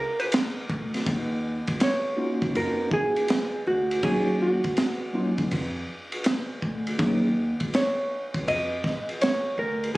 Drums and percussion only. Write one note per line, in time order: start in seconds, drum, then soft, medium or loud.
0.20 ride medium
0.32 snare loud
0.32 hi-hat pedal medium
0.32 ride medium
0.70 kick loud
0.94 snare soft
0.94 ride medium
1.06 kick loud
1.06 ride medium
1.67 kick medium
1.67 ride medium
1.80 snare loud
1.80 hi-hat pedal medium
1.80 ride medium
2.42 kick medium
2.42 ride medium
2.55 ride medium
2.91 kick medium
3.16 ride medium
3.28 snare loud
3.28 hi-hat pedal medium
3.28 ride medium
3.91 ride medium
4.03 kick loud
4.03 ride medium
4.64 kick medium
4.64 ride medium
4.77 snare loud
4.77 hi-hat pedal medium
4.77 ride medium
5.38 kick medium
5.38 ride medium
5.51 kick medium
5.51 ride medium
6.12 ride medium
6.24 snare loud
6.24 hi-hat pedal medium
6.24 ride medium
6.62 kick medium
6.87 ride medium
6.99 kick loud
6.99 ride medium
7.60 kick medium
7.60 ride medium
7.74 snare loud
7.74 hi-hat pedal medium
7.74 ride medium
8.34 kick medium
8.34 ride medium
8.48 ride medium
8.84 kick loud
8.84 snare soft
9.09 ride medium
9.21 snare loud
9.21 hi-hat pedal medium
9.21 ride medium
9.84 ride medium